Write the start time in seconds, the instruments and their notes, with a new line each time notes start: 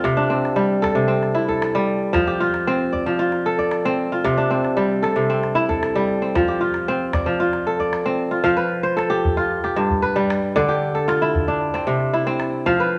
Already playing: kora C4 F4 A4 D5
0.04 kora C3, calabash thump, calabash click
0.17 kora D4
0.30 kora C4, calabash click
0.45 calabash click
0.56 kora G3
0.82 kora A4, calabash thump, calabash click
0.95 kora C3
1.08 kora C4
1.23 calabash click
1.35 kora E4
1.48 kora A4, calabash thump
1.62 calabash click
1.75 kora G3, calabash click
2.13 kora F3, calabash thump, calabash click
2.27 kora G4
2.40 kora F4, calabash click
2.54 calabash click
2.67 kora C4
2.93 kora D5, calabash thump
3.06 kora F3
3.19 kora F4
3.32 calabash click
3.46 kora A4
3.58 kora D5, calabash thump
3.71 calabash click
3.85 kora C4, calabash click
4.12 kora F4
4.24 kora C3, calabash thump, calabash click
4.37 kora D4
4.51 kora C4, calabash click
4.65 calabash click
4.77 kora G3
5.03 kora A4, calabash click
5.16 kora C3
5.30 kora C4
5.43 calabash click
5.55 kora E4
5.69 kora A4, calabash thump
5.83 calabash click
5.95 kora G3, calabash click
6.22 kora C4
6.35 kora F3, calabash thump, calabash click
6.48 kora G4, calabash click
6.61 kora F4
6.74 calabash click
6.88 kora C4
7.13 kora D5, calabash thump, calabash click
7.26 kora F3
7.40 kora F4
7.53 calabash click
7.67 kora A4, calabash click
7.79 kora D5, calabash thump
7.93 calabash click
8.06 kora C4
8.19 calabash click
8.31 kora F4
8.44 kora F3 F5, calabash thump, calabash click
8.57 kora B4, calabash click
8.83 kora C5
8.97 kora A4, calabash click
9.10 kora G4, calabash click
9.25 calabash thump
9.37 kora F4
9.51 calabash click
9.64 kora G4, calabash click
9.76 kora G2
9.90 calabash thump
10.02 kora B4, calabash click
10.16 kora G3, calabash click
10.30 calabash click
10.56 kora D3 D5, calabash thump, calabash click
10.69 kora G4, calabash click
10.95 kora A4
11.08 kora F4, calabash click
11.22 kora E4, calabash click
11.35 calabash thump
11.48 kora D4
11.62 calabash click
11.74 kora C4, calabash click
11.87 kora C3
12.00 calabash click
12.13 kora E4, calabash click
12.27 kora C4, calabash click
12.40 calabash click
12.66 kora F3 F5, calabash thump, calabash click
12.79 kora B4, calabash click